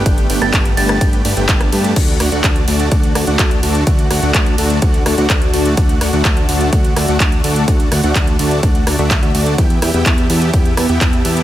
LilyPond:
<<
  \new Staff \with { instrumentName = "Synth bell" } { \time 4/4 \key d \major \tempo 4 = 126 r8. a'''16 r8 a'''16 a'''16 r2 | r1 | r1 | r1 |
r1 | r1 | }
  \new Staff \with { instrumentName = "Supersaw synth" } { \time 4/4 \key d \major d'8 <a d' g' b' g''>16 <a d' g' b' g''>16 <a d' b' a''>8 <a d' g' b' a''>8 <a d' g' b' g''>8 <a d' g' b' a''>16 <a d' g' b' g''>16 a8 <a d' g' b' a''>8 | fis'8 <a d' fis' d'' fis''>16 <a d' fis' d'' fis''>16 <a d' a''>8 <a d' fis' d'' a''>8 <a d' fis' d'' fis''>8 <a d' fis' d'' a''>16 <a d' fis' d'' fis''>16 r8 <a d' fis' d'' a''>8 | <d' fis' d'' fis''>8 <a d' fis' d'' fis''>16 <a d' fis' d'' fis''>16 a8 <a d' fis' d'' a''>8 <a d' fis' d'' fis''>8 <a d' fis' d'' a''>16 <a d' fis' d'' fis''>16 <d' d''>8 <a d' fis' d'' a''>8 | <a d' fis' fis''>8 <a d' fis' d'' fis''>16 <a d' fis' d'' fis''>16 <a d' d'' a''>8 <a d' fis' d'' a''>8 <a d' fis' d'' fis''>8 <a d' fis' d'' a''>16 <a d' fis' d'' fis''>16 d'8 <a d' fis' d'' a''>8 |
<a d' d''>8 <a d' fis' d'' fis''>16 <a d' fis' d'' fis''>16 r8 <a d' fis' d'' a''>8 <a d' fis' fis''>8 <a d' fis' d'' a''>16 <a d' fis' d'' e''>8 <a d' fis' d'' e''>16 <a d' fis' d'' a''>8 | <b e' g' e'' g''>8 <b e' g' e'' g''>16 <b e' g' e'' g''>16 <e' e''>8 <b e' g' e'' a''>8 <b e' g' e'' g''>8 <b e' g' e'' a''>16 <b e' g' e'' g''>16 <b e' g'>8 <b e' g' e'' a''>8 | }
  \new Staff \with { instrumentName = "Analog synth pad" } { \time 4/4 \key d \major <a b g'>1 | <d a fis'>1~ | <d a fis'>1~ | <d a fis'>1~ |
<d a fis'>1 | <e b g'>1 | }
  \new Staff \with { instrumentName = "Analog synth bass" } { \clef bass \time 4/4 \key d \major g,,8 g,,16 g,,16 g,,8 g,,8 g,,8 g,,16 g,,16 g,,8 g,8 | d,8 d,16 d,16 d,8 d,8 d,8 d,16 d,16 d,8 d,8 | d,8 d,16 d,16 d,8 d,8 d,8 d,16 d,16 d,8 d,8 | d,8 d,16 d,16 d,8 d,8 d,8 d,16 d,16 d,8 d,8 |
d,8 d,16 d,16 d,8 d,8 d,8 d,16 d,8 d,16 d,8 | e,8 e,16 e,16 e,8 e,8 e,8 e,16 e,16 e,8 e,8 | }
  \new DrumStaff \with { instrumentName = "Drums" } \drummode { \time 4/4 <hh bd cymr>16 hh16 <hho cymr>16 <hh ss>16 <hc hh bd cymr>16 hh16 <hho cymr>16 <hh ss>16 <hh bd cymr>16 hh16 <hho cymr>16 hh16 <hc hh bd cymr>16 <hh ss>16 <hho cymr>16 hh16 | <cymc hh bd cymr>16 hh16 <hho cymr ss>16 hh16 <hc hh bd cymr>16 hh16 <hho cymr>16 hh16 <hh bd cymr>16 hh16 <hho cymr ss>16 hh16 <hc hh bd cymr>16 hh16 <hho cymr>16 hh16 | <hh bd cymr>16 hh16 <hho cymr ss>16 hh16 <hc hh bd cymr>16 hh16 <hho cymr>16 hh16 <hh bd cymr>16 hh16 <hho cymr ss>16 hh16 <hc hh bd cymr>16 hh16 <hho cymr>16 hh16 | <hh bd cymr>16 hh16 <hho cymr ss>16 hh16 <hc hh bd cymr>16 hh16 <hho cymr>16 hh16 <hh bd cymr>16 hh16 <hho cymr ss>16 hh16 <hc hh bd cymr>16 hh16 <hho cymr>16 hh16 |
<hh bd cymr>16 hh16 <hho cymr ss>16 hh16 <hc hh bd cymr>16 hh16 <hho cymr>16 hh16 <hh bd cymr>16 hh16 <hho cymr ss>16 hh16 <hc hh bd cymr>16 hh16 <hho cymr>16 hh16 | <hh bd cymr>16 hh16 <hho cymr ss>16 hh16 <hc hh bd cymr>16 hh16 <hho cymr>16 hh16 <hh bd cymr>16 hh16 <hho cymr ss>16 hh16 <hc hh bd cymr>16 hh16 <hho cymr>16 hh16 | }
>>